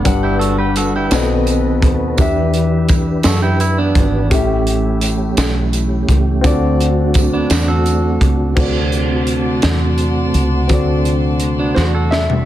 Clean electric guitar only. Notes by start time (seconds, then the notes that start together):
0.23 E4 G4
0.39 F#4 A4
0.59 G4 B4
0.77 F#4 A4
0.96 E4 G4
3.25 F#4 A4
3.42 E4 G4
3.61 E4
3.78 B3 D4
7.33 B3 D4
7.51 D4 F#4
7.68 F#4 A4
11.59 B3 D4
11.77 D4 F#4
11.95 F#4 A4